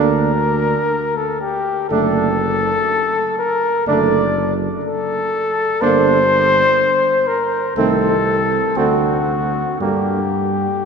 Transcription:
0.00 0.75 D2 medium
0.00 0.31 D3 soft
0.00 0.31 A#3 medium
0.00 0.32 D4 soft
0.00 1.19 A#4 medium
1.17 1.41 A4 medium
1.41 1.89 G4 medium
1.90 2.72 F#1 medium
1.90 2.28 D3 soft
1.90 2.28 A3 medium
1.90 2.29 D4 soft
1.90 3.35 A4 medium
3.39 3.86 A#4 medium
3.87 4.67 F#1 medium
3.87 4.24 D3 medium
3.87 4.24 A3 medium
3.87 4.24 D4 medium
3.87 4.55 D5 medium
4.84 5.83 A4 medium
5.81 6.62 G1 medium
5.81 6.19 D3 medium
5.81 6.18 A#3 medium
5.81 6.19 D4 medium
5.81 7.29 C5 loud
7.28 7.76 A#4 medium
7.77 8.60 C2 medium
7.77 8.15 D#3 medium
7.77 8.15 A3 medium
7.77 8.15 C4 soft
7.77 8.79 A4 medium
8.76 9.63 D2 soft
8.76 9.17 D3 soft
8.76 9.17 A3 soft
8.76 9.16 C4 soft
8.76 9.80 F#4 medium
9.80 10.67 G2 soft
9.80 10.21 D3 soft
9.80 10.21 G3 soft
9.80 10.21 A#3 soft
9.80 10.85 G4 medium

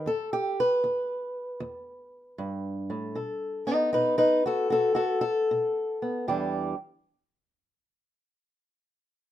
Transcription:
0.06 0.78 E2 medium
0.06 0.32 A4 loud
0.33 0.58 G4 loud
0.60 2.92 B4 loud
0.84 1.56 E2 medium
1.60 2.33 E2 medium
2.38 2.89 G2 medium
2.90 3.17 A2 medium
3.15 3.88 B2 medium
3.15 3.67 A4 soft
3.67 6.00 B3 medium
3.67 3.92 D#4 medium
3.67 3.93 B4 medium
3.93 4.67 B2 medium
3.93 4.17 D#4 medium
3.93 4.17 B4 medium
4.18 4.45 D#4 medium
4.18 4.45 B4 loud
4.46 4.69 F#4 medium
4.46 4.71 A4 medium
4.70 5.44 B2 medium
4.70 4.94 F#4 medium
4.70 4.95 A4 medium
4.95 5.22 F#4 medium
4.95 5.20 A4 medium
5.21 6.26 A4 loud
5.51 6.23 B2 medium
6.02 6.25 B3 soft
6.28 6.73 E2 medium
6.28 6.73 E3 medium
6.28 6.74 G3 medium
6.28 6.74 D4 medium
6.28 6.75 G4 medium

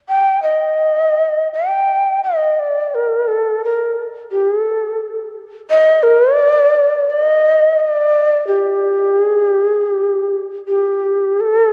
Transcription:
0.08 0.42 G5 medium
0.42 1.48 D#5 medium
1.53 2.20 G5 medium
2.23 2.60 D#5 medium
2.59 2.96 D5 medium
2.94 3.29 A#4 medium
3.27 3.62 A4 medium
3.64 4.02 A#4 medium
4.31 4.49 G4 medium
4.49 4.60 G#4 medium
4.60 5.29 A4 medium
5.70 6.05 D#5 loud
6.03 6.37 A#4 loud
6.37 7.11 D5 loud
7.10 7.81 D#5 medium
7.79 8.46 D5 medium
8.47 9.23 G4 medium
9.23 9.43 G#4 medium
9.43 9.66 G4 medium
9.66 9.86 G#4 medium
9.86 10.41 G4 medium
10.68 11.42 G4 medium
11.40 11.73 A4 medium

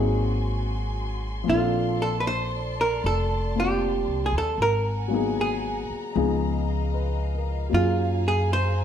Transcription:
0.00 1.43 G#1 medium
0.00 1.46 F#3 medium
0.00 1.45 A#3 soft
0.00 1.47 C4 soft
0.00 1.49 D#4 soft
0.00 0.67 F#4 medium
0.00 1.44 F#4 medium
0.00 1.49 G#4 medium
0.00 1.45 G#5 medium
0.00 4.54 C6 medium
1.44 4.57 F3 soft
1.44 3.54 A#3 soft
1.44 4.55 A5 medium
1.48 2.99 A#1 medium
1.48 3.55 C4 soft
1.48 4.61 D4 soft
1.48 2.02 F4 medium
1.48 4.56 D5 medium
1.55 4.62 A4 soft
2.02 2.20 A4 medium
2.20 2.25 B4 medium
2.27 2.75 C5 medium
2.81 3.06 A#4 medium
3.04 4.03 F1 medium
3.04 3.58 A4 medium
3.55 4.58 A#3 soft
3.55 4.59 C4 soft
3.55 4.60 F4 soft
3.60 4.29 G4 medium
4.08 4.31 C2 medium
4.26 4.35 G#4 medium
4.32 4.57 D#2 medium
4.38 4.61 A4 medium
4.58 5.85 G#1 medium
4.58 6.13 F#5 medium
4.58 6.13 G#5 medium
4.58 7.69 A#5 medium
4.62 5.40 A#4 medium
5.08 6.13 F#3 soft
5.08 6.14 A#3 soft
5.08 6.15 B3 soft
5.08 6.15 D#4 soft
5.14 6.15 G#4 medium
5.41 6.92 G#4 medium
5.90 muted upright bass stroke soft
6.14 7.68 C#2 medium
6.14 7.72 F3 soft
6.14 7.72 G#3 soft
6.14 7.73 B3 soft
6.14 7.73 D#4 soft
6.14 7.73 G#4 medium
6.14 7.70 D#5 medium
6.14 8.85 F5 medium
6.94 7.56 B4 soft
7.35 7.88 A#4 soft
7.69 8.85 F#2 medium
7.69 8.85 F#3 soft
7.69 8.85 A#3 soft
7.69 8.85 C#4 soft
7.69 8.85 F4 soft
7.69 8.85 G#4 medium
7.69 8.85 G#5 medium
7.69 8.85 A#5 medium
7.74 8.27 F4 medium
7.74 8.85 G#4 soft
8.28 8.53 G#4 medium
8.53 8.85 C5 medium

